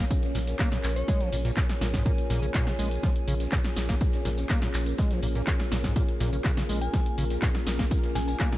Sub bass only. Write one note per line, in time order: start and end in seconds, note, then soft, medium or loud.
0.35 0.55 A#1 loud
0.84 1.03 A#1 loud
1.33 1.52 A#1 loud
1.81 2.01 A#1 medium
2.30 2.50 A#1 medium
2.79 2.98 A#1 loud
3.28 3.47 A#1 loud
3.77 3.96 A#1 medium
4.25 4.45 A#1 loud
4.74 4.94 A#1 loud
5.23 5.42 A#1 loud
5.72 5.91 A#1 medium
6.20 6.40 A#1 loud
6.69 6.89 A#1 loud
7.18 7.37 A#1 loud
7.67 7.86 A#1 medium
8.15 8.35 A#1 loud